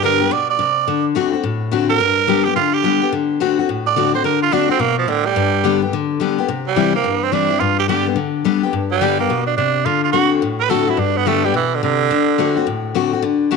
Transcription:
Already playing: G2
0.03 D3 G3 B3 G4 A#4
0.20 B3 G4
0.31 B2 D5
0.50 D5
0.59 C3
0.88 D3
1.15 D3 A3 C4 F#4
1.33 C4 F#4
1.43 A2
1.71 D3 A3 C4 F#4
1.89 C4 F#4 A#4
2.00 G2
2.27 D3 G3 B3 G4
2.45 B3 G4
2.56 D3 F4
2.73 G4
2.83 D3 G3 B3 G4
3.02 B3 G4
3.12 D3
3.40 D3 A3 C4 F#4
3.59 C4 F#4
3.69 A2
3.87 D5
3.96 D3 A3 C4 F#4
4.14 C4 F#4 C5
4.24 D3 A#4
4.43 F4
4.52 D3 A3 C4 D4 F#4
4.69 C4 F#4
4.79 B2 A#3
4.98 F3
5.08 A2 D3
5.26 G3
5.36 G2
5.64 D3 G3 B3 G4
5.82 B3 G4
5.93 D3
6.20 D3 G3 B3 G4
6.38 B3 G4
6.48 C3
6.67 G3
6.76 E3 G3 C4 E4
6.94 A#3 C4 E4
7.04 G2
7.23 C4
7.32 E3 G3 C4 D4 E4
7.50 C4 E4
7.60 G2 F4
7.79 G4
7.88 D3 G3 B3 G4
8.06 B3 G4
8.16 D3
8.45 D3 G3 B3 G4
8.63 B3 G4
8.73 G2
8.91 G3
9.01 D3 G3 B3 G4
9.19 A#3 B3 G4
9.30 B2
9.46 D4
9.57 C3 D4
9.86 D3 F4
10.04 F4
10.12 D3 A3 C4 F#4
10.42 A2
10.60 B4
10.69 D3 A3 C4 F#4 A4
10.87 C4 E4 F#4
10.97 G2 D4
11.17 B3
11.26 D3 G3 A3 B3 G4
11.44 G3 B3 G4
11.54 B2 E3
11.74 D3
11.83 C3 D3
12.11 D3
12.38 D3 A3 C4 F#4
12.57 C4 F#4
12.67 A2
12.95 D3 A3 C4 F#4
13.13 C4 F#4
13.22 D3
13.51 D3 A3 C4 F#4

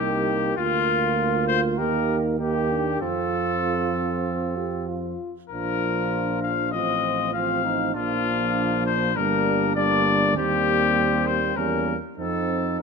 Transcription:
Already playing: C2 A#3 D#4 G4
0.57 D2 A#3 F4
1.47 C5
1.77 D#2 A#3 D#4 G4 A#4
2.39 A#3 D#4 G4
2.70 D4
3.01 F2 F3 C4 F4 A4
3.64 C4
4.57 G4
4.89 F4
5.50 A#1 F3 D4 F4 A#4
6.42 F5
6.72 A1 F3 C4 F4 D#5
7.33 F3 C4 F4 F5
7.64 D#4
7.94 A#1 F3 A#3 D4 F4
8.86 C5
9.15 G1 G3 A#3 D4 A#4
9.75 G3 A#3 D4 D5
10.36 D#2 G3 A#3 C4 G4
11.27 C5
11.57 E2 G3 A#3 C#4 A#4
12.18 F2 F3 C4 D#4 A4

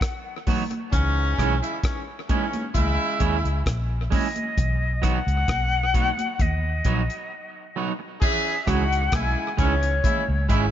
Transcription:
Already playing: F#5
0.01 kick, cross-stick, closed hi-hat
0.47 F#3 B3 D#4 F#4, kick, open hi-hat, high conga, low conga
0.71 muted clean electric guitar stroke, closed hi-hat, high conga
0.92 C#2 G#2 E3 C#4, kick, closed hi-hat, low conga
1.38 B1 G#3 C#4 E4 G#4, kick, cross-stick, closed hi-hat, low conga
1.62 C#3 G#3 E4, closed hi-hat
1.84 G#2 E3 C#4, kick, cross-stick, closed hi-hat
2.29 G#2 E3 G#3 C#4 E4 G#4, kick, closed hi-hat, high conga
2.53 closed hi-hat, high conga
2.74 C#2 C#3 G#3 E4, kick, closed hi-hat, high conga, low conga
3.20 D#2 G#3 C#4 E4 G#4, kick, closed hi-hat
3.44 C#2, closed hi-hat
3.66 A#1, kick, cross-stick, closed hi-hat
4.10 G#3 C#4 E4 G#4 D#5, kick, open hi-hat, high conga, low conga
4.36 closed hi-hat, high conga
4.58 B1, kick, closed hi-hat, low conga
5.02 F#3 B3 D#4 F#4 F#5, kick, cross-stick, closed hi-hat, low conga
5.27 C#2, closed hi-hat
5.48 B1, kick, cross-stick, closed hi-hat, high conga
5.94 F#3 B3 D#4 F#4, kick, closed hi-hat, high conga
6.18 closed hi-hat, high conga
6.39 D#2 D#5, kick, closed hi-hat, high conga, low conga
6.84 A#1 F#3 B3 D#4 F#4, kick, closed hi-hat
7.10 closed hi-hat
7.76 F#3 B3 D#4 F#4
7.99 muted clean electric guitar stroke
8.21 E3 C#4 G#4 E5, kick, crash, low conga
8.66 C#2 F#3 G#3 C#4 D#4 E4 F#4 G#4 F#5, kick, cross-stick, closed hi-hat, low conga
8.92 closed hi-hat
9.12 B1 C#3 G#3 E4 G#5, kick, cross-stick, closed hi-hat, high conga
9.57 C#2 G#2 E3 G#3 C#4 E4 G#4 C#5, kick, closed hi-hat
9.83 closed hi-hat
10.04 C#3 G#3 E4, kick, closed hi-hat, high conga, low conga
10.28 C#2
10.49 G#1 C#3 G#3 C#4 E4 G#4, kick, closed hi-hat

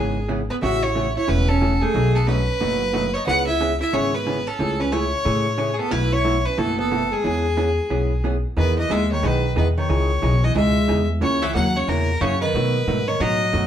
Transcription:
Already playing: G#1 C#3 E3 G#3 B3 C#4 G#4
0.28 C#3 E3 B3 C#4 G#4
0.50 B3 B4
0.62 A1 C#3 E3 A3 C#4 F#4 E5
0.83 E4 C#5
0.95 C#3 E3 A3 C#4 F#4
1.17 E4 C#5
1.28 E1 C#3 E3 A3 C#4 F#4 B4
1.49 C#4 A4
1.61 C#3 E3 A3 C#4 F#4
1.81 A3 G#4
1.94 B1 B2 F#3 A3 D#4 F#4
2.15 B3 A4
2.27 B2 F#3 A3 C#4 D#4 F#4 B4
2.61 F#1 B2 F#3 A3 D#4 F#4
2.93 B2 F#3 A3 D#4 F#4
3.14 D#4 C#5
3.27 C#2 C#3 E3 B3 C#4 G#4 B4 F#5
3.47 E4 E5
3.60 C#3 E3 B3 C#4 G#4
3.80 E4 E5
3.93 G#1 C#3 E3 B3 C#4 G#4 C#5
4.13 B3 B4
4.26 C#3 E3 B3 C#4 G#4
4.47 C#4 A4
4.59 C#2 C#3 E3 A3 C#4 G#4
4.80 C#4 B4
4.92 C#3 E3 A3 C#4 E4 G#4 C#5
5.25 A2 C#3 E3 A3 C#4 G#4
5.58 C#3 E3 A3 C#4 G#4
5.74 B3 G#4
5.79 B3 A4
5.91 B1 B2 E3 A3 E4 F#4 B4
6.12 E4 C#5
6.24 B2 E3 A3 E4 F#4
6.45 C#4 B4
6.58 F#1 B2 E3 A3 B3 E4 F#4 A4
6.79 B3 A4
6.91 B2 E3 A3 E4 F#4
7.11 G#3 G#4
7.24 E2 E3 B3 C#4 G#4
7.57 E3 B3 C#4 G#4
7.90 B1 E3 B3 C#4 G#4
8.24 E3 B3 C#4 G#4
8.56 E2 D#3 E3 B3 D#4 G#4 B4
8.79 E3 D#5
8.89 D#2 E3 G#3 B3 D#4 G#4 E5
9.12 D#3 C#5
9.23 B1 D#3 E3 B3 D#4 G#4 B4
9.56 E2 D#3 E3 B3 D#4 G#4 B4
9.78 D#3 C#5
9.89 C#2 C#3 E3 D#4 G#4
10.22 B1 C#3 E3 D#4 G#4
10.44 E3 D#5
10.55 C#2 C#3 E3 G#3 D#4 G#4 E5
10.88 E2 C#3 E3 D#4 G#4
11.21 C#2 C#3 E3 A#3 C#4 F#4 C#5
11.42 E3 E5
11.54 D#2 C#3 E3 F#3 A#3 C#4 F#4 F#5
11.75 C#3 C#5
11.87 E2 A#2 C#3 E3 A#3 C#4 F#4 A#4
12.21 F#2 C#3 E3 A#3 C#4 F#4 C#5
12.41 D#3 B4
12.54 B2 F#3 A3 D#4 F#4
12.87 G#2 B2 F#3 A3 D#4 F#4
13.08 D#3 C#5
13.20 A2 B2 F#3 A3 D#4 F#4 D#5
13.53 F#2 B2 F#3 A3 D#4 F#4

